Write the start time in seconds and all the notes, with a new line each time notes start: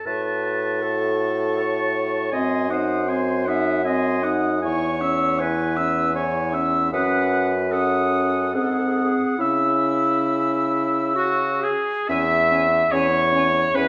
0.06 A2 F#4 B4 A5 C#6
0.24 A5
0.44 A5
0.62 A5
0.82 A4 A5
1.00 A5
1.18 A5
1.38 A5
1.56 C#5 A5
1.77 A5
1.95 A5
2.13 A5
2.32 F#2 C4 D#5 G#5 C6
2.70 D#4 C5 F#5 D#6
3.08 C4 G#5 C6
3.46 D#4 E5 F#5 D#6
3.84 C4 D#5 G#5 C6
4.23 D#4 F#5 D#6
4.62 E2 E4 C#5 G#5 C#6
5.01 C#4 E5 E6
5.38 E4 B4 G#5 C#6
5.76 C#4 E5 E6
6.14 E4 C#5 G#5 C#6
6.52 C#4 E5 E6
6.92 F#2 C#4 B4 F#5 D#6
7.70 C#4 A4 F#5 D#6
8.53 G#2 C4 G#4 F#5 D#6
8.61 A4
8.70 G#4
8.78 A4
8.87 G#4
8.96 A4
9.04 G#4
9.38 C#3 C#4 E4 E5 E6
11.15 F#4
11.61 G#4
12.08 E2 C#4 E5 G#5
12.51 C#4 G#5
12.92 E2 C#4 C#5 G#5
13.33 C#4 G#5
13.74 E2 C#4 B4 G#5